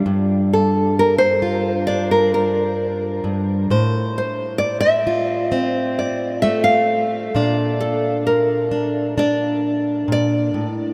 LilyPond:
<<
  \new Staff \with { instrumentName = "Nylon-string guitar" } { \time 4/4 \key g \dorian \tempo 4 = 66 r8 a'8 bes'16 c''8. d''16 bes'16 bes'4 r8 | r8 c''8 d''16 e''8. r8 d''8 e''16 f''8. | r8 a'8 bes'4 d''4 d''4 | }
  \new Staff \with { instrumentName = "Steel-string acoustic guitar" } { \time 4/4 \key g \dorian << { r4. f'8 d'2 | c''4. f'8 c'2 | <d' d''>4. d'8 d'2 | } \\ { <g, g>2.~ <g, g>8 g,8 | a,2. a4 | bes,2. bes,8 a,8 | } >> }
>>